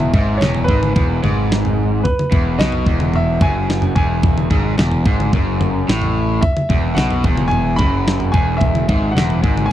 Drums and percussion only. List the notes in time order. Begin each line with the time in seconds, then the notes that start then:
0.00 mid tom
0.14 kick, floor tom
0.41 snare, mid tom
0.55 floor tom
0.68 kick
0.83 mid tom
0.96 kick, floor tom
1.24 floor tom, mid tom
1.52 snare
1.65 floor tom
2.05 kick, floor tom
2.19 mid tom
2.32 kick, floor tom
2.60 snare, mid tom
2.72 floor tom
2.86 kick
3.00 mid tom
3.14 floor tom
3.41 kick, floor tom, mid tom
3.70 snare
3.82 floor tom
3.96 kick
4.23 kick, floor tom
4.38 mid tom
4.51 kick, floor tom
4.78 snare, mid tom
4.92 floor tom
5.06 kick
5.20 mid tom
5.33 kick, floor tom
5.61 floor tom, mid tom
5.89 snare
6.02 floor tom
6.43 kick, floor tom
6.57 mid tom
6.70 kick, floor tom
6.97 snare, mid tom
7.11 floor tom
7.24 kick
7.37 mid tom
7.51 floor tom
7.79 kick, floor tom, mid tom
8.08 snare
8.20 floor tom
8.34 kick
8.61 kick, floor tom
8.75 mid tom
8.89 kick, floor tom
9.17 snare, mid tom
9.30 floor tom
9.44 kick
9.57 mid tom